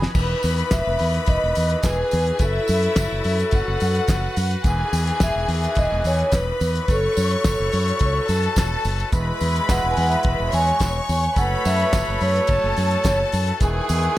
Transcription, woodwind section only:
Already playing: E3 B3 D#4 F#4 G#4
0.15 D#3 E3 B3 F#4 B4
2.40 F#3 C#4 E4 A4
4.64 D#3 E3 B3 F#4
6.88 F#3 C#4 E4 A4
9.12 E3 B3 F#4 D#5
11.37 F#3 C#4 E4 A4
13.61 G#3 B3 F#4 B4

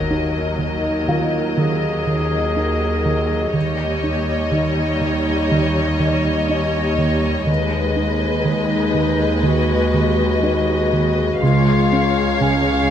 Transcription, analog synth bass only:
0.11 D#4
0.58 D#3
1.08 D#3
1.58 D#3
2.07 D#3
2.57 D#4
3.06 D#3
3.54 D#3
4.04 D#4
4.52 D#3
5.01 D#3
5.52 D#3
6.00 D#3
6.49 D#4
6.98 D#3
7.47 D#3
7.96 D#4
8.45 D#3
8.94 D#3
9.43 D#3
9.94 D#3
10.43 D#4
10.93 D#3
11.43 C#3
11.93 C#4
12.41 C#3

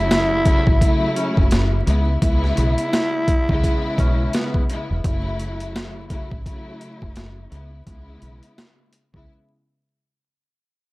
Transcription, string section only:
Already playing: C#3 F#3 A3 E4
0.43 C#3 F#3 A3 E4
0.80 C#3 F#3 A3 E4
1.85 C#3 G#3 B3 E4
2.20 C#3 G#3 B3 E4
3.49 C#3 G#3 B3 E4
4.69 C#3 G#3 B3 E4
5.03 C#3 F#3 A3 E4
6.08 C#3 F#3 A3 E4
6.44 C#3 F#3 A3 E4
7.50 C#3 G#3 B3 E4
7.85 C#3 G#3 B3 E4
9.13 C#3 G#3 B3 E4

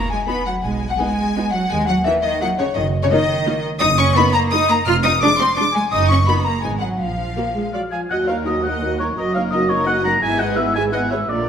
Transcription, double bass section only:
0.63 B1
1.70 D#2
2.76 F#1
3.81 F#1
4.87 F1
5.92 F#1
6.64 G#1
7.00 A#1
8.10 D#2
9.17 F#1
10.22 G#1
11.30 A#1

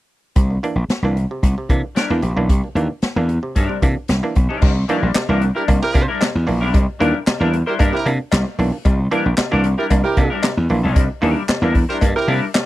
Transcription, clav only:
0.36 C3
0.50 A#3 D4
0.63 E3 A#3 D4
1.04 E3 A#3 D4
1.31 C3
1.43 A#3 D4
1.58 C3
1.70 E3 A#3 D4
2.10 E3 A#3 D4
2.22 C3
2.37 E3 A#3 D4
2.49 C3
2.64 A#3 D4
2.76 E3 A#3 D4
3.17 E3 A#3 D4
3.43 C3
3.56 A#3 D4
3.69 C3
3.82 E3 A#3 D4
4.23 E3 A#3 D4
4.50 C3
4.63 C3
4.89 E3 A#3 D4
5.04 A#3 D4
5.16 C3
5.29 E3 A#3 D4
5.42 A#3 D4
5.68 A#3 D4
5.82 C3
5.94 A#3 D4
6.21 C3
6.47 E3 A#3 D4
6.61 A#3 D4
6.74 C3
7.00 E3 A#3 D4
7.14 A#3 D4
7.27 C3
7.41 E3 A#3 D4
7.53 A#3 D4
7.79 A#3 D4
7.93 C3
8.06 A#3 D4
8.33 C3
8.59 E3 A#3 D4
8.72 A#3 D4
8.85 C3
9.11 E3 A#3 D4
9.25 A#3 D4
9.37 C3
9.52 E3 A#3 D4
9.64 A#3 D4
9.91 A#3 D4
10.04 C3
10.17 A#3 D4
10.44 C3
10.70 E3 A#3 D4
10.84 A#3 D4
10.96 C3
11.22 E3 A#3 D4
11.36 A#3 D4
11.49 C3
11.62 E3 A#3 D4
11.75 A#3 D4
12.02 A#3 D4
12.16 C3
12.28 A#3 D4
12.55 C3

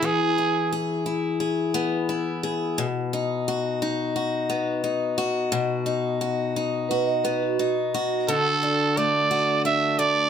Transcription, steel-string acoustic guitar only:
Already playing: B3 E4 G#4
0.02 E3
0.38 E4
0.73 G#4
1.06 E4
1.40 G#4
1.74 B3
2.09 E4
2.43 G#4
2.78 B2
3.13 D#4
3.48 F#4
3.82 D#4
4.16 F#4
4.50 B3
4.84 D#4
5.18 F#4
5.52 B2
5.86 D#4
6.21 F#4
6.56 D#4
6.91 F#4
7.25 B3
7.59 D#4
7.94 F#4
8.28 D3
8.63 D4
8.97 A3
9.31 F#4
9.65 D4
9.99 A3

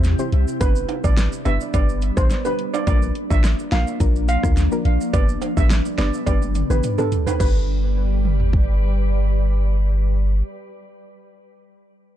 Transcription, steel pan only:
0.61 B4
1.04 D5
1.45 E5
1.74 D5
2.17 C5
2.45 B4
2.74 D5
2.87 D5
3.30 E5
3.72 F5
4.29 F5
5.13 D5
5.57 E5
5.98 D5
6.27 D5
6.70 B4
6.98 A4
7.27 B4
7.40 B4

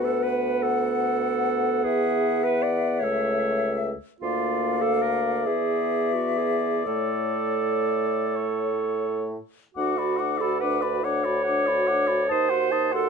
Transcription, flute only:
Already playing: B4
0.62 F#5
1.85 E5
4.21 F5
5.47 E5
6.87 C#5
9.76 D6
9.98 B5
10.19 D6
10.41 B5
10.61 D6
10.82 B5
11.05 D6
11.25 B5
11.46 D6
11.68 B5
11.88 D6
12.08 B5
12.28 D#6
12.50 C6
12.72 D#6
12.92 C6

